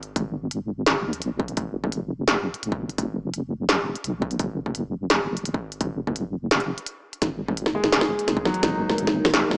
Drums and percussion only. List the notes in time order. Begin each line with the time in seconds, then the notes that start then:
0.03 closed hi-hat
0.16 kick, closed hi-hat
0.51 closed hi-hat
0.86 snare, closed hi-hat
1.13 closed hi-hat
1.22 closed hi-hat
1.40 kick
1.48 closed hi-hat
1.57 kick, closed hi-hat
1.84 kick
1.92 closed hi-hat
2.28 snare, closed hi-hat
2.54 closed hi-hat
2.63 closed hi-hat
2.72 kick
2.89 closed hi-hat
2.98 kick, closed hi-hat
3.34 closed hi-hat
3.69 snare, closed hi-hat
3.95 closed hi-hat
4.04 closed hi-hat
4.22 kick
4.31 closed hi-hat
4.39 kick, closed hi-hat
4.66 kick
4.75 closed hi-hat
5.10 snare, closed hi-hat
5.37 closed hi-hat
5.45 closed hi-hat
5.54 kick
5.72 closed hi-hat
5.81 kick, closed hi-hat
6.07 kick
6.16 closed hi-hat
6.51 snare, closed hi-hat
6.60 closed hi-hat
6.78 closed hi-hat
6.86 closed hi-hat
7.13 closed hi-hat
7.22 kick, snare, closed hi-hat
7.48 kick
7.57 closed hi-hat
7.66 snare
7.84 snare
7.92 snare, closed hi-hat
8.01 snare
8.19 closed hi-hat
8.28 snare, closed hi-hat
8.37 kick
8.45 snare
8.54 closed hi-hat
8.63 kick, snare, closed hi-hat
8.89 snare
8.98 closed hi-hat
9.07 snare
9.25 snare
9.34 snare, closed hi-hat
9.51 snare